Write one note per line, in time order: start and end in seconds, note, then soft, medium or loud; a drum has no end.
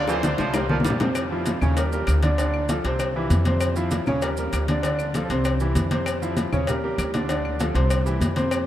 0.00 0.33 D2 medium
0.08 0.24 E3 medium
0.08 0.21 F3 medium
0.08 0.69 E4 medium
0.08 0.21 F4 medium
0.08 0.21 A4 medium
0.08 0.69 C5 medium
0.08 high bongo medium
0.08 high conga soft
0.08 claves medium
0.08 maracas medium
0.23 0.49 D3 medium
0.23 0.49 D4 medium
0.23 0.49 D5 medium
0.23 cowbell medium
0.23 low bongo medium
0.23 high conga loud
0.23 maracas medium
0.38 0.81 C2 loud
0.38 0.55 F3 medium
0.38 cowbell medium
0.38 low bongo medium
0.38 high conga soft
0.38 maracas soft
0.54 0.67 G3 medium
0.54 0.67 G4 medium
0.54 0.67 A#4 medium
0.54 cowbell loud
0.54 low bongo loud
0.54 high conga soft
0.54 claves medium
0.54 maracas medium
0.69 0.77 F3 medium
0.69 0.95 G3 medium
0.69 0.95 G4 medium
0.69 0.95 A#4 medium
0.69 high conga loud
0.80 high conga loud
0.84 1.56 F2 medium
0.84 1.01 G3 medium
0.84 cowbell medium
0.84 low bongo medium
0.84 maracas medium
0.90 low conga loud
1.00 1.13 C3 medium
1.00 1.13 C4 medium
1.00 1.13 C5 medium
1.00 cowbell medium
1.00 low bongo loud
1.00 low conga loud
1.00 maracas soft
1.15 cowbell loud
1.15 high conga soft
1.15 claves medium
1.15 maracas medium
1.31 1.56 F3 medium
1.31 1.57 E4 medium
1.31 1.57 F4 medium
1.31 high conga soft
1.46 cowbell medium
1.46 high conga medium
1.46 maracas medium
1.61 2.04 D#2 loud
1.61 1.74 C#3 medium
1.61 1.74 C#4 medium
1.61 1.75 C#5 medium
1.61 high conga soft
1.61 low conga medium
1.61 claves medium
1.61 maracas soft
1.77 1.90 G3 medium
1.77 1.90 G4 medium
1.77 1.90 A#4 medium
1.77 cowbell loud
1.77 high conga soft
1.77 maracas medium
1.92 2.18 G3 medium
1.92 2.18 G4 medium
1.92 2.18 A#4 medium
1.92 high conga soft
1.92 maracas medium
2.07 2.79 D2 loud
2.07 cowbell medium
2.07 high conga soft
2.07 claves medium
2.07 maracas medium
2.23 2.35 D3 medium
2.23 2.36 D4 medium
2.23 2.36 D5 medium
2.23 cowbell medium
2.23 high conga medium
2.23 maracas soft
2.38 2.64 D3 medium
2.38 2.64 D4 medium
2.38 2.64 D5 medium
2.38 cowbell loud
2.38 high conga soft
2.38 maracas medium
2.54 high conga soft
2.54 claves medium
2.69 2.82 F3 medium
2.69 2.82 F4 medium
2.69 2.82 A4 medium
2.69 cowbell medium
2.69 high conga medium
2.69 maracas medium
2.84 3.27 C2 medium
2.84 3.10 C3 medium
2.84 3.10 C4 medium
2.84 3.10 C5 medium
2.84 cowbell medium
2.84 high conga soft
2.84 maracas soft
2.99 cowbell loud
2.99 high conga soft
2.99 claves medium
2.99 maracas medium
3.15 3.41 E3 medium
3.15 3.41 E4 medium
3.15 3.41 G4 medium
3.15 high conga soft
3.30 4.02 F2 loud
3.30 cowbell medium
3.30 high conga loud
3.30 maracas medium
3.45 3.71 C3 medium
3.45 3.71 C4 medium
3.45 3.72 C5 medium
3.45 cowbell medium
3.45 high conga medium
3.45 maracas soft
3.60 cowbell loud
3.60 high conga soft
3.60 claves medium
3.60 maracas medium
3.76 4.01 F3 medium
3.76 4.02 E4 medium
3.76 4.02 F4 medium
3.76 high conga soft
3.76 maracas medium
3.91 cowbell medium
3.91 high conga loud
3.91 maracas medium
4.06 4.50 D#2 medium
4.06 4.20 C#3 medium
4.06 4.20 C#4 medium
4.06 4.20 C#5 medium
4.06 high conga soft
4.06 low conga medium
4.06 claves medium
4.06 maracas soft
4.22 4.35 G3 medium
4.22 4.35 G4 medium
4.22 4.35 A#4 medium
4.22 cowbell loud
4.22 high conga soft
4.22 maracas medium
4.37 4.63 G3 medium
4.37 4.63 G4 medium
4.37 4.64 A#4 medium
4.37 high conga soft
4.37 maracas medium
4.53 5.24 D2 medium
4.53 cowbell medium
4.53 high conga soft
4.53 claves medium
4.53 maracas medium
4.68 4.81 D3 medium
4.68 4.81 D4 medium
4.68 4.82 D5 medium
4.68 cowbell medium
4.68 high conga medium
4.68 maracas soft
4.83 5.09 D3 medium
4.83 5.09 D4 medium
4.83 5.10 D5 medium
4.83 cowbell loud
4.83 high conga soft
4.83 maracas medium
4.99 high conga soft
4.99 claves medium
4.99 maracas medium
5.14 5.28 F3 medium
5.14 5.28 F4 medium
5.14 5.28 A4 medium
5.14 cowbell medium
5.14 high conga medium
5.14 maracas medium
5.30 5.73 C2 medium
5.30 5.55 C3 medium
5.30 5.55 C4 medium
5.30 5.56 C5 medium
5.30 cowbell medium
5.30 high conga soft
5.30 maracas soft
5.45 cowbell loud
5.45 high conga soft
5.45 claves medium
5.45 maracas medium
5.60 5.86 E3 medium
5.60 5.86 E4 medium
5.60 5.86 G4 medium
5.60 high conga soft
5.60 maracas medium
5.75 6.47 F2 loud
5.75 cowbell medium
5.75 high conga loud
5.75 maracas medium
5.91 6.17 C3 medium
5.91 6.17 C4 medium
5.91 6.17 C5 medium
5.91 cowbell medium
5.91 high conga loud
5.91 maracas soft
6.06 cowbell loud
6.06 high conga soft
6.06 claves medium
6.06 maracas medium
6.22 6.47 F3 medium
6.22 6.47 E4 medium
6.22 6.48 F4 medium
6.22 high conga soft
6.22 maracas medium
6.37 cowbell medium
6.37 high conga loud
6.37 maracas medium
6.53 6.95 D#2 loud
6.53 6.65 C#3 medium
6.53 6.65 C#4 medium
6.53 6.66 C#5 medium
6.53 high conga soft
6.53 low conga medium
6.53 claves medium
6.53 maracas soft
6.67 6.81 G3 medium
6.67 6.81 G4 medium
6.67 6.81 A#4 medium
6.67 cowbell loud
6.67 high conga soft
6.67 low conga medium
6.67 maracas medium
6.84 7.09 G3 medium
6.84 7.09 G4 medium
6.84 7.09 A#4 medium
6.84 high conga soft
6.98 7.70 D2 loud
6.98 cowbell medium
6.98 high conga soft
6.98 claves medium
6.98 maracas medium
7.14 7.26 D3 medium
7.14 7.27 D4 medium
7.14 7.27 D5 medium
7.14 cowbell medium
7.14 high conga medium
7.14 maracas soft
7.29 7.54 D3 medium
7.29 7.55 D4 medium
7.29 7.55 D5 medium
7.29 cowbell loud
7.29 high conga soft
7.29 maracas medium
7.45 high conga soft
7.45 claves medium
7.60 7.73 F3 medium
7.60 7.73 F4 medium
7.60 7.73 A4 medium
7.60 cowbell medium
7.60 high conga loud
7.60 maracas medium
7.74 8.18 C2 loud
7.74 8.00 C3 medium
7.74 8.00 C4 medium
7.74 8.00 C5 medium
7.74 cowbell medium
7.74 high conga soft
7.74 maracas soft
7.90 cowbell loud
7.90 high conga soft
7.90 claves medium
7.90 maracas medium
8.06 8.31 E3 medium
8.06 8.31 E4 medium
8.06 8.31 G4 medium
8.06 high conga soft
8.06 maracas medium
8.21 8.67 F2 loud
8.21 cowbell medium
8.21 high conga loud
8.21 maracas medium
8.36 8.62 C3 medium
8.36 8.62 C4 medium
8.36 8.62 C5 medium
8.36 cowbell medium
8.36 high conga medium
8.36 maracas soft
8.51 cowbell loud
8.51 high conga soft
8.51 claves medium
8.51 maracas medium